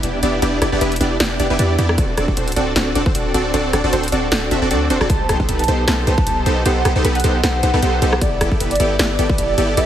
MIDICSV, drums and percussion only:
0, 0, Header, 1, 2, 480
1, 0, Start_track
1, 0, Key_signature, 1, "minor"
1, 0, Tempo, 389610
1, 520, Time_signature, 4, 2, 24, 8
1, 12146, End_track
2, 0, Start_track
2, 0, Title_t, "Drums"
2, 41, Note_on_c, 9, 42, 83
2, 164, Note_off_c, 9, 42, 0
2, 281, Note_on_c, 9, 42, 73
2, 404, Note_off_c, 9, 42, 0
2, 521, Note_on_c, 9, 42, 77
2, 644, Note_off_c, 9, 42, 0
2, 761, Note_on_c, 9, 37, 60
2, 761, Note_on_c, 9, 42, 66
2, 884, Note_off_c, 9, 37, 0
2, 884, Note_off_c, 9, 42, 0
2, 1000, Note_on_c, 9, 42, 78
2, 1123, Note_off_c, 9, 42, 0
2, 1131, Note_on_c, 9, 42, 48
2, 1185, Note_off_c, 9, 42, 0
2, 1185, Note_on_c, 9, 42, 65
2, 1240, Note_off_c, 9, 42, 0
2, 1240, Note_on_c, 9, 42, 66
2, 1363, Note_off_c, 9, 42, 0
2, 1480, Note_on_c, 9, 38, 120
2, 1480, Note_on_c, 9, 42, 79
2, 1603, Note_off_c, 9, 38, 0
2, 1603, Note_off_c, 9, 42, 0
2, 1720, Note_on_c, 9, 42, 65
2, 1843, Note_off_c, 9, 42, 0
2, 1960, Note_on_c, 9, 42, 85
2, 2083, Note_off_c, 9, 42, 0
2, 2200, Note_on_c, 9, 42, 65
2, 2323, Note_off_c, 9, 42, 0
2, 2330, Note_on_c, 9, 37, 76
2, 2440, Note_on_c, 9, 36, 124
2, 2440, Note_on_c, 9, 42, 75
2, 2454, Note_off_c, 9, 37, 0
2, 2563, Note_off_c, 9, 36, 0
2, 2563, Note_off_c, 9, 42, 0
2, 2679, Note_on_c, 9, 37, 55
2, 2679, Note_on_c, 9, 42, 66
2, 2803, Note_off_c, 9, 37, 0
2, 2803, Note_off_c, 9, 42, 0
2, 2811, Note_on_c, 9, 36, 62
2, 2919, Note_on_c, 9, 42, 78
2, 2934, Note_off_c, 9, 36, 0
2, 3043, Note_off_c, 9, 42, 0
2, 3051, Note_on_c, 9, 42, 48
2, 3105, Note_off_c, 9, 42, 0
2, 3105, Note_on_c, 9, 42, 65
2, 3159, Note_off_c, 9, 42, 0
2, 3159, Note_on_c, 9, 42, 65
2, 3283, Note_off_c, 9, 42, 0
2, 3399, Note_on_c, 9, 38, 124
2, 3399, Note_on_c, 9, 42, 75
2, 3523, Note_off_c, 9, 38, 0
2, 3523, Note_off_c, 9, 42, 0
2, 3640, Note_on_c, 9, 42, 63
2, 3763, Note_off_c, 9, 42, 0
2, 3771, Note_on_c, 9, 36, 116
2, 3880, Note_on_c, 9, 42, 81
2, 3894, Note_off_c, 9, 36, 0
2, 4003, Note_off_c, 9, 42, 0
2, 4120, Note_on_c, 9, 42, 64
2, 4243, Note_off_c, 9, 42, 0
2, 4360, Note_on_c, 9, 42, 69
2, 4483, Note_off_c, 9, 42, 0
2, 4600, Note_on_c, 9, 37, 59
2, 4600, Note_on_c, 9, 42, 65
2, 4723, Note_off_c, 9, 37, 0
2, 4723, Note_off_c, 9, 42, 0
2, 4839, Note_on_c, 9, 42, 75
2, 4963, Note_off_c, 9, 42, 0
2, 4971, Note_on_c, 9, 42, 48
2, 5025, Note_off_c, 9, 42, 0
2, 5025, Note_on_c, 9, 42, 61
2, 5080, Note_off_c, 9, 42, 0
2, 5080, Note_on_c, 9, 42, 63
2, 5203, Note_off_c, 9, 42, 0
2, 5320, Note_on_c, 9, 38, 116
2, 5320, Note_on_c, 9, 42, 71
2, 5443, Note_off_c, 9, 38, 0
2, 5443, Note_off_c, 9, 42, 0
2, 5560, Note_on_c, 9, 42, 64
2, 5683, Note_off_c, 9, 42, 0
2, 5799, Note_on_c, 9, 42, 74
2, 5922, Note_off_c, 9, 42, 0
2, 6040, Note_on_c, 9, 42, 65
2, 6163, Note_off_c, 9, 42, 0
2, 6170, Note_on_c, 9, 37, 76
2, 6279, Note_on_c, 9, 42, 75
2, 6280, Note_on_c, 9, 36, 122
2, 6293, Note_off_c, 9, 37, 0
2, 6402, Note_off_c, 9, 42, 0
2, 6403, Note_off_c, 9, 36, 0
2, 6520, Note_on_c, 9, 37, 60
2, 6520, Note_on_c, 9, 42, 62
2, 6643, Note_off_c, 9, 37, 0
2, 6643, Note_off_c, 9, 42, 0
2, 6651, Note_on_c, 9, 36, 62
2, 6759, Note_on_c, 9, 42, 81
2, 6774, Note_off_c, 9, 36, 0
2, 6883, Note_off_c, 9, 42, 0
2, 6891, Note_on_c, 9, 42, 48
2, 6945, Note_off_c, 9, 42, 0
2, 6945, Note_on_c, 9, 42, 60
2, 7000, Note_off_c, 9, 42, 0
2, 7000, Note_on_c, 9, 42, 62
2, 7123, Note_off_c, 9, 42, 0
2, 7239, Note_on_c, 9, 38, 118
2, 7239, Note_on_c, 9, 42, 77
2, 7363, Note_off_c, 9, 38, 0
2, 7363, Note_off_c, 9, 42, 0
2, 7480, Note_on_c, 9, 42, 61
2, 7603, Note_off_c, 9, 42, 0
2, 7611, Note_on_c, 9, 36, 114
2, 7720, Note_on_c, 9, 42, 80
2, 7734, Note_off_c, 9, 36, 0
2, 7844, Note_off_c, 9, 42, 0
2, 7960, Note_on_c, 9, 42, 64
2, 8084, Note_off_c, 9, 42, 0
2, 8200, Note_on_c, 9, 42, 76
2, 8324, Note_off_c, 9, 42, 0
2, 8441, Note_on_c, 9, 37, 64
2, 8441, Note_on_c, 9, 42, 65
2, 8564, Note_off_c, 9, 37, 0
2, 8564, Note_off_c, 9, 42, 0
2, 8681, Note_on_c, 9, 42, 81
2, 8804, Note_off_c, 9, 42, 0
2, 8812, Note_on_c, 9, 42, 49
2, 8866, Note_off_c, 9, 42, 0
2, 8866, Note_on_c, 9, 42, 68
2, 8920, Note_off_c, 9, 42, 0
2, 8920, Note_on_c, 9, 42, 71
2, 9043, Note_off_c, 9, 42, 0
2, 9161, Note_on_c, 9, 38, 108
2, 9161, Note_on_c, 9, 42, 76
2, 9284, Note_off_c, 9, 38, 0
2, 9284, Note_off_c, 9, 42, 0
2, 9401, Note_on_c, 9, 42, 68
2, 9524, Note_off_c, 9, 42, 0
2, 9641, Note_on_c, 9, 42, 83
2, 9764, Note_off_c, 9, 42, 0
2, 9881, Note_on_c, 9, 42, 67
2, 10004, Note_off_c, 9, 42, 0
2, 10012, Note_on_c, 9, 37, 87
2, 10120, Note_on_c, 9, 36, 110
2, 10121, Note_on_c, 9, 42, 82
2, 10135, Note_off_c, 9, 37, 0
2, 10243, Note_off_c, 9, 36, 0
2, 10244, Note_off_c, 9, 42, 0
2, 10361, Note_on_c, 9, 37, 64
2, 10361, Note_on_c, 9, 42, 71
2, 10484, Note_off_c, 9, 37, 0
2, 10484, Note_off_c, 9, 42, 0
2, 10491, Note_on_c, 9, 36, 59
2, 10601, Note_on_c, 9, 42, 81
2, 10614, Note_off_c, 9, 36, 0
2, 10724, Note_off_c, 9, 42, 0
2, 10731, Note_on_c, 9, 42, 50
2, 10786, Note_off_c, 9, 42, 0
2, 10786, Note_on_c, 9, 42, 67
2, 10840, Note_off_c, 9, 42, 0
2, 10840, Note_on_c, 9, 42, 69
2, 10964, Note_off_c, 9, 42, 0
2, 11080, Note_on_c, 9, 38, 116
2, 11080, Note_on_c, 9, 42, 78
2, 11203, Note_off_c, 9, 38, 0
2, 11203, Note_off_c, 9, 42, 0
2, 11320, Note_on_c, 9, 42, 70
2, 11443, Note_off_c, 9, 42, 0
2, 11451, Note_on_c, 9, 36, 109
2, 11560, Note_on_c, 9, 42, 79
2, 11575, Note_off_c, 9, 36, 0
2, 11684, Note_off_c, 9, 42, 0
2, 11800, Note_on_c, 9, 42, 71
2, 11923, Note_off_c, 9, 42, 0
2, 12041, Note_on_c, 9, 42, 81
2, 12146, Note_off_c, 9, 42, 0
2, 12146, End_track
0, 0, End_of_file